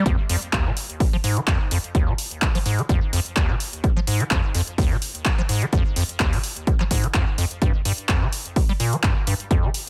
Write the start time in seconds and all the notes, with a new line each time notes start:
0.06 F2, kick, closed hi-hat
0.29 F2, open hi-hat
0.42 closed hi-hat
0.53 D#2, kick, clap, closed hi-hat
0.66 C3
0.77 open hi-hat
0.90 closed hi-hat
1.00 kick, open hi-hat
1.13 F3
1.24 G#2, open hi-hat
1.37 F3, closed hi-hat
1.48 F2, kick, clap, closed hi-hat
1.71 F2, open hi-hat
1.84 closed hi-hat
1.95 D#2, kick, closed hi-hat
2.08 C3
2.18 open hi-hat
2.31 closed hi-hat
2.42 kick, clap, closed hi-hat
2.55 F3, open hi-hat
2.66 G#2, open hi-hat
2.79 F3, closed hi-hat
2.89 F2, kick, closed hi-hat
3.13 F2, open hi-hat
3.26 closed hi-hat
3.36 D#2, kick, clap, closed hi-hat
3.50 C3
3.60 open hi-hat
3.73 closed hi-hat
3.84 kick, closed hi-hat
3.97 F3
4.07 G#2, open hi-hat
4.20 F3, closed hi-hat
4.31 F2, kick, clap, closed hi-hat
4.55 F2, open hi-hat
4.67 closed hi-hat
4.78 D#2, kick, open hi-hat
4.91 C3
5.02 open hi-hat
5.15 closed hi-hat
5.25 kick, clap, closed hi-hat
5.38 F3
5.49 G#2, open hi-hat
5.62 F3, closed hi-hat
5.73 F2, kick, closed hi-hat
5.96 F2, open hi-hat
6.09 closed hi-hat
6.20 D#2, kick, clap, closed hi-hat
6.33 C3, open hi-hat
6.44 open hi-hat
6.57 closed hi-hat
6.67 kick, closed hi-hat
6.80 F3, clap
6.91 G#2, kick, open hi-hat
7.04 F3, closed hi-hat
7.14 F2, kick, clap, closed hi-hat
7.38 F2, open hi-hat
7.51 closed hi-hat
7.62 G2, kick, closed hi-hat
7.85 G2, open hi-hat
7.98 closed hi-hat
8.09 F2, kick, clap, closed hi-hat
8.22 D3
8.33 open hi-hat
8.46 closed hi-hat
8.56 kick, open hi-hat
8.69 G3
8.80 A#2, open hi-hat
8.93 G3, closed hi-hat
9.03 G2, kick, clap, closed hi-hat
9.27 G2, open hi-hat
9.40 closed hi-hat
9.51 F2, kick, closed hi-hat
9.64 D3
9.74 open hi-hat